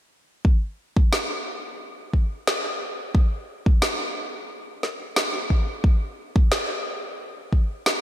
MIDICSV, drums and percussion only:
0, 0, Header, 1, 2, 480
1, 0, Start_track
1, 0, Tempo, 674157
1, 319, Time_signature, 4, 2, 24, 8
1, 5703, End_track
2, 0, Start_track
2, 0, Title_t, "Drums"
2, 319, Note_on_c, 9, 36, 97
2, 390, Note_off_c, 9, 36, 0
2, 687, Note_on_c, 9, 36, 97
2, 759, Note_off_c, 9, 36, 0
2, 802, Note_on_c, 9, 38, 86
2, 873, Note_off_c, 9, 38, 0
2, 1520, Note_on_c, 9, 36, 52
2, 1591, Note_off_c, 9, 36, 0
2, 1762, Note_on_c, 9, 38, 95
2, 1833, Note_off_c, 9, 38, 0
2, 2240, Note_on_c, 9, 36, 104
2, 2311, Note_off_c, 9, 36, 0
2, 2608, Note_on_c, 9, 36, 98
2, 2679, Note_off_c, 9, 36, 0
2, 2720, Note_on_c, 9, 38, 94
2, 2791, Note_off_c, 9, 38, 0
2, 3441, Note_on_c, 9, 38, 29
2, 3512, Note_off_c, 9, 38, 0
2, 3677, Note_on_c, 9, 38, 90
2, 3748, Note_off_c, 9, 38, 0
2, 3918, Note_on_c, 9, 36, 59
2, 3989, Note_off_c, 9, 36, 0
2, 4158, Note_on_c, 9, 36, 105
2, 4229, Note_off_c, 9, 36, 0
2, 4526, Note_on_c, 9, 36, 107
2, 4598, Note_off_c, 9, 36, 0
2, 4640, Note_on_c, 9, 38, 97
2, 4711, Note_off_c, 9, 38, 0
2, 5358, Note_on_c, 9, 36, 57
2, 5429, Note_off_c, 9, 36, 0
2, 5598, Note_on_c, 9, 38, 91
2, 5669, Note_off_c, 9, 38, 0
2, 5703, End_track
0, 0, End_of_file